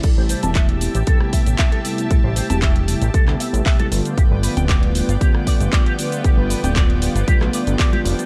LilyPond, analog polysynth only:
\new Staff \with { instrumentName = "Analog polysynth" } { \time 4/4 \key a \minor \tempo 4 = 116 <c g>4. <c g a b e'>16 r16 <c g a b e'>4. <c g a b e'>8 | r4. <c g a b e'>16 r16 <c g a b e'>4. <d g a b f'>8 | d4. <d g a b f'>16 r16 <d g a b f'>4. <d g a b f'>8 | <d a b f'>4. <d g a b f'>16 r16 <d g a b f'>8 <d g a b f'>16 <d g a b g'>8 <d g a b f'>8 <d g a b g'>16 | }